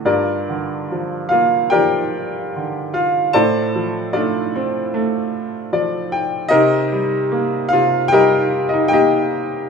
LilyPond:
<<
  \new Staff \with { instrumentName = "Upright piano" } { \time 4/4 \key g \minor \tempo 4 = 75 << { <d' f' bes' d''>4. <f' f''>8 <g' bes' d'' g''>4 r8 <f' f''>8 | <a' c'' d'' a''>4 <d' f' d''>2~ <d' f' d''>8 r8 | <ees' g' bes' ees''>4. <f' f''>8 <g' bes' ees'' g''>8. <ees' ees''>16 <g' ees'' g''>4 | } \\ { r1 | r2. d''8 g''8 | r1 | } >> }
  \new Staff \with { instrumentName = "Upright piano" } { \clef bass \time 4/4 \key g \minor g,8 d8 f8 bes8 f4 d4 | a,8 f8 a8 c'8 a4 f4 | c8 g8 bes8 c8 g4 bes4 | }
>>